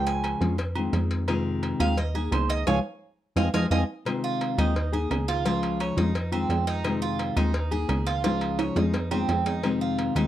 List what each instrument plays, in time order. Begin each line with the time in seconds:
Already playing: analog synth bass C#2, nylon-string guitar C#3 F3 G#3 C#4 F4
0.07 cuban tres G#5, cowbell, low agogo
0.24 cowbell, low timbale, low agogo, claves
0.41 analog synth bass F2, nylon-string guitar F3 G#3 C#4 F4, cowbell
0.58 muted nylon-string guitar stroke, cowbell, low agogo
0.75 nylon-string guitar D#3 G#3 C4 F4, low agogo, claves
0.93 analog synth bass F2, nylon-string guitar D#3 G#3 C4 F4, cowbell, low timbale, low agogo
1.11 cowbell
1.28 nylon-string guitar C3 D#3 G#3 C4 F4, cowbell, low agogo, claves
1.63 cowbell, low timbale, low agogo
1.80 analog synth bass D#2, nylon-string guitar D#3 G#3 C4 F4, cuban tres F5, cowbell, low agogo, claves
1.97 cuban tres D#5, muted nylon-string guitar stroke, cowbell
2.14 nylon-string guitar A#3 D#4 G#4, cuban tres G#4, low agogo
2.32 analog synth bass C#2, nylon-string guitar D#3 A#3 D#4 G#4, cuban tres C5, cowbell, low timbale, low agogo, claves
2.50 cuban tres D#5, cowbell
2.66 analog synth bass C#2, nylon-string guitar F3 G#3 C#4, cuban tres C#5 F5 G#5, cowbell, high timbale, claves
3.36 analog synth bass F2, nylon-string guitar F3 G#3 C4, cuban tres D#5 F5 G#5, cowbell, high timbale, claves
3.54 analog synth bass F2, nylon-string guitar F3 G#3 C4, cuban tres D#5 F5 G#5, cowbell, high timbale, claves
3.71 analog synth bass F2, nylon-string guitar F3 G#3 C4, cuban tres D#5 F5 G#5, cowbell, high timbale, claves
4.05 nylon-string guitar C3 D#3 G#3 C4 F4, cowbell, low agogo, claves
4.24 cuban tres F4
4.41 cowbell, low timbale, low agogo
4.58 analog synth bass D#2, nylon-string guitar D#3 G#3 C4 F4, cuban tres D#4, cowbell, low agogo, claves
4.76 muted nylon-string guitar stroke, cowbell
4.92 nylon-string guitar A#3 D#4 G#4, cuban tres G#4, low agogo
5.10 analog synth bass C#2, nylon-string guitar D#3 A#3 D#4 G#4, cowbell, low timbale, low agogo, claves
5.28 cuban tres F4, cowbell
5.44 nylon-string guitar C#3 F3 G#3 C#4 F4, cuban tres F4, cowbell, low agogo
5.63 cowbell, low agogo
5.80 cuban tres C#5, cowbell, low timbale, low agogo, claves
5.97 analog synth bass F2, nylon-string guitar F3 G#3 C#4 F4, cuban tres D#4, cowbell
6.15 muted nylon-string guitar stroke, cowbell, low agogo
6.32 nylon-string guitar D#3 G#3 C4 F4, cuban tres C4, low agogo, claves
6.49 analog synth bass F2, nylon-string guitar D#3 G#3 C4 F4, cowbell, low timbale, low agogo
6.67 cuban tres D#4, cowbell
6.84 nylon-string guitar C3 D#3 G#3 C4 F4, cowbell, low agogo, claves
7.02 cuban tres F4
7.19 cowbell, low timbale, low agogo
7.36 analog synth bass D#2, nylon-string guitar D#3 G#3 C4 F4, cuban tres D#4, cowbell, low agogo, claves
7.54 muted nylon-string guitar stroke, cowbell
7.71 nylon-string guitar A#3 D#4 G#4, cuban tres G#4, low agogo
7.89 analog synth bass C#2, nylon-string guitar D#3 A#3 D#4 G#4, cowbell, low timbale, low agogo, claves
8.07 cuban tres F4, cowbell
8.24 nylon-string guitar C#3 F3 G#3 C#4 F4, cuban tres F4, cowbell, high timbale, low agogo
8.41 cowbell, low agogo
8.59 cuban tres C#5, cowbell, high timbale, low agogo, claves
8.76 analog synth bass F2, nylon-string guitar F3 G#3 C#4 F4, cuban tres D#4, cowbell, low timbale
8.94 muted nylon-string guitar stroke, cowbell, low timbale, low agogo
9.11 nylon-string guitar D#3 G#3 C4 F4, cuban tres C4, low timbale, low agogo, claves
9.28 analog synth bass F2, nylon-string guitar D#3 G#3 C4 F4, cowbell, low timbale, low agogo
9.46 cuban tres D#4, cowbell, low timbale
9.63 nylon-string guitar C3 D#3 G#3 C4 F4, cowbell, low agogo, claves
9.81 cuban tres F4
9.99 cowbell, low timbale, low agogo
10.15 analog synth bass D#2, nylon-string guitar D#3 G#3 C4 F4, cuban tres D#4, cowbell, low agogo, claves